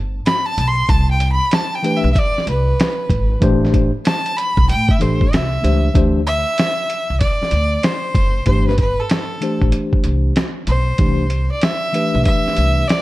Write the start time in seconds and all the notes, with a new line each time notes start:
Already playing: G1
0.26 B5, snare, closed hi-hat
0.46 A5
0.58 B1, closed hi-hat
0.67 C6
0.89 C2 A5, kick, closed hi-hat
1.11 G5
1.20 closed hi-hat
1.32 B5
1.51 A5, snare, closed hi-hat
1.75 G5
1.83 E3 A3 D4 G4 B4, closed hi-hat
1.96 E5
2.04 B1
2.13 E5, kick, closed hi-hat
2.18 D5
2.36 muted upright bass stroke, snare
2.47 C2 B4, closed hi-hat
2.80 snare, closed hi-hat
3.10 G#1, kick, closed hi-hat
3.40 A1 E3 A3 D4 G4 C5, kick, closed hi-hat
3.65 snare
3.74 kick, closed hi-hat
4.05 A5, snare, closed hi-hat
4.26 closed hi-hat
4.37 B5, closed hi-hat
4.57 B1, kick
4.69 A2 G5, closed hi-hat
4.89 E5, kick
4.99 A1 E3 A3 D4 G4 A4 C5, closed hi-hat
5.21 kick
5.33 C2 E5, snare, closed hi-hat
5.61 C#2 E3 A3 D4 G4 C5, closed hi-hat
5.94 D2 E3 A3 D4 G4 C5, kick, closed hi-hat
6.27 E5, closed hi-hat
6.58 snare, closed hi-hat
6.90 closed hi-hat
7.10 C2
7.20 D5, kick, closed hi-hat
7.42 muted upright bass stroke, snare
7.51 D2, closed hi-hat
7.83 C5, snare, closed hi-hat
8.15 F#1, kick, closed hi-hat
8.46 G1 E3 A3 D4 G4 C5, kick, closed hi-hat
8.68 B4, snare
8.78 B4, kick, closed hi-hat
9.00 A4
9.10 snare, closed hi-hat
9.40 E3 A3 D4 G4 C5, closed hi-hat
9.62 A1, kick
9.72 closed hi-hat
9.93 muted upright bass stroke, kick
10.04 C2, closed hi-hat
10.36 snare, closed hi-hat
10.67 B1 C5, closed hi-hat
10.98 C2 E3 A3 D4 G4 C5, kick, closed hi-hat
11.30 closed hi-hat
11.52 D5
11.61 E5, snare, closed hi-hat
11.93 E3 A3 D4 G4 B4, closed hi-hat
12.15 B1
12.25 E5, kick, closed hi-hat
12.46 muted upright bass stroke, snare
12.57 C2, closed hi-hat
12.87 D5, snare, closed hi-hat